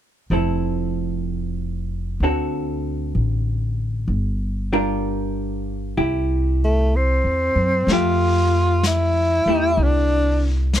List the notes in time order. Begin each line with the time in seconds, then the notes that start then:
0.30 F1 F3 C4 E4 A4
2.20 D2 D3 C4 F#4 A4
3.15 A1
4.08 G1
4.73 G3 D4 F4 A#4
5.97 C2 E4 G4
6.64 A3
6.96 C4
7.24 E2
7.55 F#2
7.87 F2 A3, brush sweep, snare
7.92 F4 G4
8.83 E4, brush sweep, snare, hi-hat pedal
9.46 E2 A3 E4
9.50 G4
9.77 C2, brush sweep
9.83 D4
10.73 brush sweep, snare, hi-hat pedal